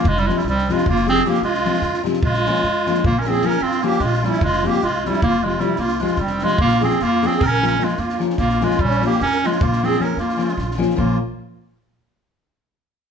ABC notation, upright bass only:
X:1
M:11/8
L:1/8
Q:1/4=151
K:Bbm
V:1 name="Upright bass" clef=bass
F,,,2 C,,2 F,,,3 C,,2 F,,2 | B,,,2 F,,2 B,,,3 F,,2 B,,,2 | F,,,2 C,,2 F,,,3 C,,2 F,,,2 | B,,,2 F,,2 B,,,3 F,,2 B,,,2 |
B,,,2 F,,2 B,,,3 F,,2 B,,,2 | B,,, z8 z2 |]